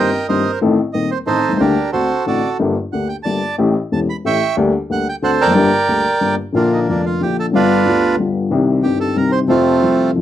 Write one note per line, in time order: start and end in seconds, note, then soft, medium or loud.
0.00 0.27 A#4 medium
0.00 0.27 D#5 medium
0.00 0.27 G5 medium
0.29 0.43 G1 medium
0.29 0.42 G2 medium
0.29 0.42 D#3 soft
0.29 0.42 A#3 soft
0.29 0.43 C4 soft
0.29 0.43 G4 soft
0.29 0.59 A#4 soft
0.29 0.59 C5 soft
0.29 0.51 D#5 medium
0.61 0.75 A1 medium
0.61 0.75 A2 medium
0.61 0.75 D#3 medium
0.61 0.75 A3 medium
0.61 0.75 C4 medium
0.61 0.75 A4 medium
0.93 1.08 D#1 soft
0.93 1.08 D#2 soft
0.93 1.08 D#3 soft
0.93 1.08 A3 soft
0.93 1.08 C4 soft
0.93 1.08 A4 soft
0.93 1.10 D#5 medium
1.11 1.18 C5 medium
1.27 1.41 A1 soft
1.27 1.41 A2 medium
1.27 1.41 D#3 soft
1.27 1.41 A3 soft
1.27 1.41 C4 soft
1.27 1.57 D#4 medium
1.27 1.57 A4 medium
1.27 1.41 A4 soft
1.27 1.61 C5 medium
1.49 1.52 B1 soft
1.49 1.56 C2 medium
1.56 1.60 C#2 medium
1.56 1.91 D4 medium
1.56 1.91 G4 medium
1.56 1.91 A#4 medium
1.60 1.74 D2 medium
1.60 1.74 D3 medium
1.60 1.74 G3 medium
1.60 1.74 A#3 medium
1.60 1.74 G4 medium
1.92 2.07 D2 soft
1.92 2.07 D3 soft
1.92 2.07 A3 soft
1.92 2.07 C4 soft
1.92 2.26 F#4 medium
1.92 2.07 F#4 soft
1.92 2.26 A4 medium
1.92 2.24 C5 medium
2.26 2.40 A1 soft
2.26 2.40 A2 soft
2.26 2.40 D3 soft
2.26 2.40 A3 soft
2.26 2.40 C4 soft
2.26 2.40 F#4 soft
2.26 2.57 F#4 soft
2.26 2.57 A4 soft
2.26 2.50 D5 medium
2.59 2.73 G1 medium
2.59 2.73 G2 medium
2.59 2.73 D3 medium
2.59 2.73 A3 medium
2.59 2.73 A#3 medium
2.59 2.74 G4 medium
2.93 3.07 D2 soft
2.93 3.07 D3 soft
2.93 3.07 A3 soft
2.93 3.07 A#3 soft
2.93 3.07 G4 soft
2.93 3.08 F#5 medium
3.09 3.16 G5 medium
3.23 3.40 G1 soft
3.23 3.40 G2 soft
3.23 3.39 D3 soft
3.23 3.39 A3 soft
3.23 3.40 A#3 soft
3.23 3.40 G4 soft
3.23 3.56 D5 medium
3.23 3.55 A5 medium
3.58 3.72 A1 medium
3.58 3.72 A2 medium
3.58 3.72 E3 medium
3.58 3.72 A3 medium
3.58 3.72 C#4 medium
3.58 3.72 G4 medium
3.92 4.05 E1 medium
3.92 4.06 E2 soft
3.92 4.05 E3 soft
3.92 4.06 A3 soft
3.92 4.06 C#4 soft
3.92 4.06 G4 soft
3.92 4.00 A5 medium
4.10 4.17 B5 medium
4.24 4.38 A1 medium
4.24 4.38 A2 medium
4.24 4.38 E3 soft
4.24 4.38 A3 soft
4.24 4.38 C#4 soft
4.24 4.38 G4 soft
4.24 4.56 E5 medium
4.24 4.56 G5 medium
4.24 4.56 C#6 medium
4.57 4.71 D2 medium
4.57 4.71 D3 medium
4.57 4.71 G3 medium
4.57 4.71 A#3 medium
4.57 4.71 G4 medium
4.90 5.03 D2 medium
4.90 5.03 D3 medium
4.90 5.03 G3 soft
4.90 5.03 A#3 soft
4.90 5.04 G4 soft
4.90 5.08 F#5 medium
5.09 5.16 G5 medium
5.22 5.36 D2 medium
5.22 5.36 D3 medium
5.22 5.36 A3 soft
5.22 5.36 C4 soft
5.22 5.36 F#4 soft
5.22 5.53 A4 medium
5.22 5.53 C5 medium
5.22 5.31 F#5 medium
5.41 5.47 E2 soft
5.41 6.35 A#4 medium
5.41 6.35 D5 medium
5.41 6.35 G5 medium
5.47 5.51 F2 medium
5.47 5.55 F#2 medium
5.54 5.69 G1 medium
5.54 5.69 G2 medium
5.54 5.68 D3 medium
5.54 5.68 G3 medium
5.54 5.69 A#3 medium
5.54 5.69 G4 medium
5.88 6.02 D2 soft
5.88 6.02 D3 soft
5.88 6.02 G3 soft
5.88 6.02 A#3 soft
5.88 6.02 G4 soft
6.20 6.35 G1 soft
6.20 6.35 G2 soft
6.20 6.35 D3 soft
6.20 6.35 G3 soft
6.20 6.35 A#3 soft
6.20 6.35 G4 soft
6.52 6.86 A#1 medium
6.52 6.86 A#2 medium
6.52 6.85 D3 medium
6.52 6.86 F3 medium
6.52 6.86 A#3 soft
6.52 7.02 A#3 medium
6.52 6.87 D4 medium
6.52 6.72 F4 medium
6.52 6.87 F4 medium
6.73 6.80 D#4 medium
6.87 7.20 F1 soft
6.87 7.19 F2 soft
6.87 7.18 D3 soft
6.87 7.19 F3 soft
6.87 7.20 A#3 soft
6.87 7.05 D4 medium
6.87 7.20 F4 soft
7.05 7.22 F4 medium
7.20 7.52 A#1 soft
7.20 7.52 A#2 soft
7.20 7.50 D3 soft
7.20 7.52 F3 soft
7.20 7.53 A#3 soft
7.20 7.37 G4 medium
7.24 7.54 F4 soft
7.40 7.46 A4 medium
7.52 7.85 G1 medium
7.52 7.85 G2 medium
7.52 7.84 D3 medium
7.52 7.84 G3 medium
7.52 7.85 B3 medium
7.52 8.15 D4 medium
7.52 8.16 F4 medium
7.52 7.86 F4 medium
7.56 8.16 B4 medium
7.85 8.17 D2 soft
7.85 8.15 D3 soft
7.85 8.17 G3 soft
7.85 8.18 B3 soft
7.85 8.18 F4 soft
8.17 8.50 G1 soft
8.17 8.50 G2 soft
8.17 8.49 D3 soft
8.17 8.49 G3 soft
8.17 8.50 B3 soft
8.21 8.51 F4 soft
8.50 8.82 C2 medium
8.50 8.82 C3 medium
8.50 8.81 D#3 medium
8.50 8.82 G3 medium
8.50 8.83 C4 medium
8.50 8.83 G4 medium
8.82 9.15 G1 soft
8.82 9.15 G2 soft
8.82 9.13 D#3 soft
8.82 9.15 G3 soft
8.82 9.15 C4 soft
8.82 8.99 G4 medium
8.82 9.16 G4 soft
9.00 9.17 A4 medium
9.15 9.47 C2 soft
9.15 9.46 C3 soft
9.15 9.46 D#3 soft
9.15 9.47 G3 soft
9.15 9.48 C4 soft
9.15 9.48 G4 soft
9.15 9.32 A#4 medium
9.32 9.39 C5 loud
9.47 9.80 F2 medium
9.47 9.79 C3 medium
9.47 9.80 F3 medium
9.47 10.11 A3 medium
9.47 9.80 A3 medium
9.47 10.11 C4 medium
9.47 10.11 F4 medium
9.47 9.81 F4 medium
9.81 10.13 C2 soft
9.81 10.12 C3 soft
9.81 10.13 F3 soft
9.81 10.14 A3 soft
9.81 10.15 F4 soft
10.14 10.22 F2 soft
10.14 10.22 C3 soft
10.14 10.22 F3 soft
10.14 10.22 A3 soft
10.18 10.22 F4 soft